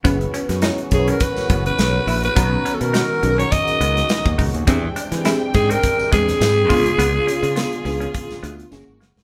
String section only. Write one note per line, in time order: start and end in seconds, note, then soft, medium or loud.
0.04 2.34 E3 medium
0.04 2.34 F#3 medium
0.04 4.64 B3 medium
0.04 2.34 C#4 medium
0.04 4.64 F#4 medium
2.35 4.65 D#3 medium
2.35 4.65 F#3 medium
2.35 4.65 C#4 medium
4.68 6.68 E3 medium
4.68 9.24 G#3 medium
4.68 6.68 C4 medium
4.68 6.68 D4 medium
4.68 6.68 G5 medium
6.70 9.24 C#3 medium
6.70 8.70 D3 medium
6.70 8.70 B3 medium
6.70 8.70 F4 medium
8.72 9.24 E3 medium
8.72 9.24 A#3 medium
8.72 9.24 F#4 medium